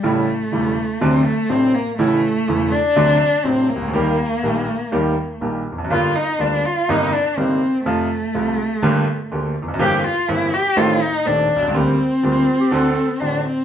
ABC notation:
X:1
M:4/4
L:1/16
Q:1/4=123
K:Gm
V:1 name="Clarinet"
z16 | z16 | z16 | z16 |
z16 | z16 | z4 F3 G A3 z4 z |]
V:2 name="Cello"
A,8 C2 A,2 C2 B,2 | A,6 D6 C2 B,2- | B,12 z4 | F2 E2 D2 F2 E2 D2 C4 |
A,12- A,2 z2 | G3/2 G/2 F2 =E2 G2 F2 _E2 D4 | C12 D2 C2 |]
V:3 name="Grand piano" clef=bass
[A,,,A,,^C,G,A,=E]2 z2 [=E,,,=E,,C,G,A,E]2 z2 [D,,=C,D,^F,A,D]2 z2 [A,,,A,,C,F,A,D]2 z2 | [A,,,A,,^C,=E,A,=E]2 z2 [=E,,,=E,,C,E,A,E]2 z2 [D,,=C,D,^F,A,D]2 z2 [A,,,A,,C,F,A,D]2 z/2 C,,/2 ^C,,/2 D,,/2 | [E,,E,G,B,G]2 z2 [B,,,B,,E,G,B,G]2 z2 [E,,E,G,B,G]2 z2 [B,,,B,,E,G,B,G]2 z/2 =E,,/2 F,,/2 ^F,,/2 | [G,,,G,,D,G,B,F]2 z2 [D,,D,G,B,F]2 z2 [G,,,G,,C,G,B,E]2 z2 [G,,,G,,C,G,B,E]2 z2 |
[F,,C,F,A,F]2 z2 [C,,C,F,A,F]2 z2 [G,,,G,,D,A,B,G]2 z2 [D,,D,A,B,G]2 z/2 =E,,/2 F,,/2 ^F,,/2 | [G,,,G,,=E,B,CG]2 z2 [G,,,G,,E,B,CG]2 z2 [A,,,A,,_E,A,CA]2 z2 [E,,,E,,E,A,CA]2 z/2 =B,,,/2 C,,/2 ^C,,/2 | [D,,D,G,B,G]2 z2 [D,,D,G,B,G]2 z2 [D,,D,A,C^F]2 z2 [A,,,A,,D,A,CF]2 z2 |]